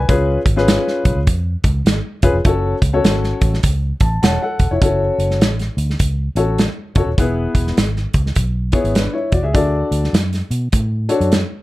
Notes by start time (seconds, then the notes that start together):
Already playing: G#5
0.08 C#2 C#4 F4 G#4 B4, kick, closed hi-hat
0.45 G#1, kick, closed hi-hat
0.56 C#4 F4 G#4 B4, snare
0.68 snare, closed hi-hat
0.88 snare
1.05 B1, kick, closed hi-hat
1.15 C#2
1.27 F2, kick, closed hi-hat
1.64 C#2, kick, closed hi-hat
1.85 G#1, snare, closed hi-hat
2.22 E1 C#4 F4 G#4 B4, kick, closed hi-hat
2.33 F1
2.45 F#1 C#4 F#4 A4 C#5, kick, closed hi-hat
2.82 C#2, kick, closed hi-hat
2.93 C#4 F#4 A4 C#5
3.04 G#1, snare, closed hi-hat
3.24 snare
3.41 A1, kick, closed hi-hat
3.54 snare
3.63 C#2, kick, closed hi-hat
4.00 A1 A5, kick, closed hi-hat
4.23 E1 C#5 F#5 A5, snare, closed hi-hat
4.42 A4 F#5
4.59 E1, kick, closed hi-hat
4.71 F1 E4 C#5
4.81 F#1 C#4 F#4 A4 C#5, kick, closed hi-hat
5.18 F#1, closed hi-hat
5.31 snare
5.40 A1, snare, closed hi-hat
5.59 snare, closed hi-hat
5.77 D2, closed hi-hat
5.90 snare
5.99 C#2, kick, closed hi-hat
6.35 A1 C#4 F#4 A4 C#5, closed hi-hat
6.58 snare, closed hi-hat
6.95 F#1 C#4 F#4 A4 C#5, kick, closed hi-hat
7.06 D#1
7.18 E1 B3 E4 G#4 B4, kick, closed hi-hat
7.55 E1, kick, closed hi-hat
7.67 snare
7.77 G#1, snare, closed hi-hat
7.96 snare
8.13 C#2, kick, closed hi-hat
8.26 snare
8.35 B1, kick, closed hi-hat
8.72 B3 E4 G#4 C#5, kick, closed hi-hat
8.84 G#1, closed hi-hat
8.95 D4 B4, snare, closed hi-hat
9.14 E4 C#5
9.32 E1 F#4 D5, kick, closed hi-hat
9.43 C#2 G#4 E5
9.53 D2 D4 F#4 A4 D5, kick, closed hi-hat
9.91 D2, closed hi-hat
10.04 snare
10.13 F#2, snare, closed hi-hat
10.33 snare, closed hi-hat
10.51 B2, closed hi-hat
10.72 A2, kick, closed hi-hat
11.09 D4 F#4 A4 C#5, closed hi-hat
11.20 F#2, closed hi-hat
11.32 snare, closed hi-hat